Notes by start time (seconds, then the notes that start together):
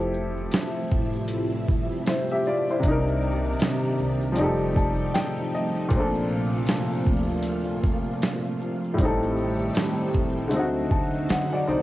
Already playing: F1 C3 F3 G3 A3 C4 E4 G4 A4
0.00 shaker
0.13 shaker
0.37 shaker
0.52 snare, closed hi-hat, shaker
0.75 shaker
0.90 shaker
0.92 A1, kick, shaker
1.13 shaker
1.15 shaker
1.27 closed hi-hat, shaker
1.50 shaker
1.68 kick, shaker
1.70 shaker
1.91 shaker
2.06 E4 C5, snare, closed hi-hat, shaker
2.29 G4 E5, shaker
2.45 F4 D5, shaker
2.69 E4 C5, shaker
2.79 C3 C4, closed hi-hat, shaker
2.83 C2 C3 D#3 A#3 D4 D5, kick
2.88 D#4 A#4
3.08 shaker
3.21 shaker
3.45 shaker
3.59 snare, closed hi-hat, shaker
3.83 shaker
3.97 shaker
3.99 C2, shaker
4.21 shaker
4.23 shaker
4.32 F3 C4, closed hi-hat, shaker
4.36 F1 C3 F3 A3 D#4 D5
4.41 G4 A4
4.58 shaker
4.76 A5, kick, shaker
4.99 shaker
5.14 G5, snare, closed hi-hat, shaker
5.37 shaker
5.53 D#5, shaker
5.76 shaker
5.89 A#1 A#2 F3 A#3 F4, kick, closed hi-hat, shaker
5.94 C4 D4
6.00 A4
6.15 shaker
6.29 shaker
6.52 shaker
6.66 snare, closed hi-hat, shaker
6.90 shaker
7.04 shaker
7.07 D2, kick, shaker
7.28 shaker
7.30 shaker
7.42 closed hi-hat, shaker
7.65 shaker
7.84 kick, shaker
7.86 shaker
8.05 shaker
8.21 snare, closed hi-hat, shaker
8.45 shaker
8.61 shaker
8.84 shaker
8.94 A2 G3
8.98 A1 D#3 G3 A3 C4 D#4 G4, kick, closed hi-hat, shaker
9.05 A4
9.23 shaker
9.37 shaker
9.60 shaker
9.75 snare, closed hi-hat, shaker
9.98 shaker
10.13 A1, kick, shaker
10.37 shaker
10.48 D3 A3, closed hi-hat, shaker
10.53 D2 D3 F#3 C4 D#4
10.59 F#4
10.73 shaker
10.91 D2 A5, kick, shaker
10.93 shaker
11.13 shaker
11.15 shaker
11.28 D3 F#5, snare, closed hi-hat, shaker
11.52 F#4 D5 F#5, shaker
11.67 D2 D#4 C5 D5, shaker